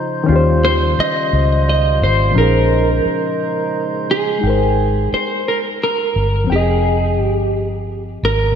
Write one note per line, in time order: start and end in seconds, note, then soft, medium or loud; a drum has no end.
0.00 0.22 C#3 medium
0.00 4.38 C#3 medium
0.00 0.26 F3 medium
0.00 0.23 C#4 medium
0.00 0.24 D#4 medium
0.00 0.25 D#4 medium
0.00 0.26 F4 medium
0.00 0.26 C5 medium
0.00 0.28 C5 medium
0.24 2.29 D#3 medium
0.24 2.30 C#4 medium
0.29 0.94 D#2 loud
0.29 2.33 G3 medium
0.29 2.33 F4 medium
0.29 2.32 F4 medium
0.29 2.33 G4 medium
0.29 4.38 C5 medium
0.36 2.35 C5 medium
0.65 0.74 C5 loud
0.98 1.68 D#5 loud
0.98 muted fingered electric bass stroke soft
1.33 2.03 C#2 medium
1.69 2.03 D#5 medium
2.02 2.32 G#1 medium
2.02 2.34 C5 loud
2.31 4.36 A#2 medium
2.31 4.37 F3 medium
2.35 3.01 A#1 loud
2.35 4.40 G#3 medium
2.35 4.38 C#4 medium
2.35 4.40 D#4 medium
2.35 4.39 D#4 medium
2.35 4.05 A#4 medium
2.40 4.41 G#4 medium
2.40 4.42 C5 medium
3.06 muted fingered electric bass stroke soft
4.11 5.09 G#4 medium
4.38 6.43 G#3 medium
4.38 6.44 D#4 soft
4.43 5.08 G#1 medium
4.43 6.47 A#4 soft
4.43 6.46 G5 soft
4.50 6.49 C5 medium
5.13 5.48 C5 medium
5.13 muted fingered electric bass stroke soft
5.48 5.57 A#4 medium
5.83 6.52 A#4 medium
6.16 6.46 G1 medium
6.44 8.49 F3 medium
6.44 8.51 C4 medium
6.50 7.19 F1 medium
6.50 7.17 G#4 medium
6.50 8.54 G#4 medium
6.50 8.52 G5 medium
6.56 8.55 D#5 medium
7.17 8.18 G1 medium
7.17 7.50 G4 medium
8.23 8.53 G#1 medium
8.23 8.55 A#4 medium
8.52 8.55 A#2 medium